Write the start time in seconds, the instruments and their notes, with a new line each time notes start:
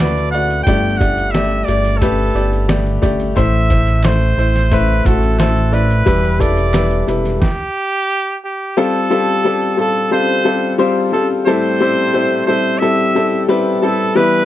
Already playing: analog synth bass D2, upright piano A4 D5 E5, trumpet D5
0.00 upright piano A3 F#4 B4, snare, closed hi-hat
0.17 closed hi-hat
0.31 upright piano A3 F#4 D5, trumpet F#5, closed hi-hat
0.50 closed hi-hat
0.63 analog synth bass G1, trumpet G5, kick, closed hi-hat
0.67 upright piano G2 A3 G4 D5
0.97 upright piano A3 G4 D5, trumpet F#5, kick
1.01 closed hi-hat
1.18 closed hi-hat
1.31 upright piano A3 G4, trumpet E5, snare, closed hi-hat
1.35 upright piano D5
1.51 closed hi-hat
1.64 upright piano A3, trumpet D5, closed hi-hat
1.68 analog synth bass G1, upright piano G4 D5
1.84 snare, closed hi-hat
1.98 upright piano A3, trumpet A4, kick, closed hi-hat
2.02 upright piano G4 B4
2.35 analog synth bass G1, upright piano A3 G4 D5, closed hi-hat
2.53 closed hi-hat
2.68 upright piano A3 G4 D5, snare, closed hi-hat
2.87 closed hi-hat
3.02 analog synth bass G1, upright piano A3 G4 D5, kick, closed hi-hat
3.20 closed hi-hat
3.36 analog synth bass A1, upright piano A2 A3 E4 C5, trumpet E5, kick, closed hi-hat
3.69 upright piano A3 E4 C5, kick, closed hi-hat
3.87 closed hi-hat
4.04 upright piano A3 E4 C5, trumpet C5, snare, clap, closed hi-hat
4.22 closed hi-hat
4.38 analog synth bass A1, upright piano A3 E4 C5, closed hi-hat
4.56 snare, closed hi-hat
4.72 upright piano A3 E4 C5, trumpet B4, kick, closed hi-hat
5.05 analog synth bass A1, upright piano A3 E4 F#4, trumpet A4, kick, closed hi-hat
5.23 closed hi-hat
5.39 upright piano A3 E4 C5, trumpet A4, snare, clap, closed hi-hat
5.57 closed hi-hat
5.72 upright piano A3 E4 D5, trumpet B4, closed hi-hat
5.91 closed hi-hat
6.06 analog synth bass E1, upright piano E3 G3 E4 B4, kick, closed hi-hat
6.25 closed hi-hat
6.39 upright piano G3 E4 A4, trumpet D5, kick, closed hi-hat
6.57 closed hi-hat
6.74 upright piano G3 E4 B4, snare, clap, closed hi-hat
6.91 closed hi-hat
7.08 analog synth bass E1, upright piano G3 E4 B4, closed hi-hat
7.25 snare, closed hi-hat
7.42 trumpet G4, kick, snare
8.44 trumpet G4
8.77 upright piano G3 C4 F4 A4, trumpet A4
9.10 upright piano G3 C4 F4 A4
9.45 upright piano G3 C4 F4 A4
9.77 upright piano G3 C4 F4 A4, trumpet A4
10.11 upright piano G3 C4 F4 A4, trumpet C5
10.45 upright piano G3 C4 F4 A4
10.78 upright piano G3 C4 F4 C5
11.12 upright piano G3 C4 F4 A4, trumpet A4
11.46 upright piano A2 G3 C4 E4 A4, trumpet C5
11.80 upright piano G3 C4 E4 C5
12.14 upright piano G3 C4 E4 C5
12.47 upright piano G3 C4 E4 A4, trumpet C5
12.79 upright piano G3 C4 E4 A4, trumpet E5
13.15 upright piano G3 C4 E4 A4
13.49 upright piano G3 C4 E4 B4
13.82 upright piano G3 C4 E4 A4, trumpet A4
14.15 upright piano E3 G3 B3 E4 B4, trumpet B4